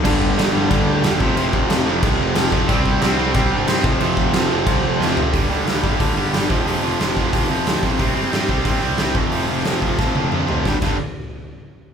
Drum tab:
CC |x-x-x-x-|x-x-x-x-|x-x-x-x-|x-x-x---|
HH |--------|--------|--------|--------|
SD |--o---o-|--o---o-|--o---o-|--o---o-|
T1 |--------|--------|--------|--------|
T2 |--------|--------|--------|--------|
FT |--------|--------|--------|-------o|
BD |oo--o--o|-o--o--o|oo--o--o|-o--o---|

CC |--------|--------|--------|--------|
HH |o-o-o-o-|o-o-o-o-|o-o-o-o-|o-o-----|
SD |--o---o-|--o---o-|--o---o-|--o-o---|
T1 |--------|--------|--------|-----o--|
T2 |--------|--------|--------|------o-|
FT |--------|--------|--------|-------o|
BD |o--oo--o|---oo--o|o--oo--o|---oo---|

CC |-x------|
HH |--------|
SD |o-------|
T1 |--------|
T2 |--------|
FT |--------|
BD |oo------|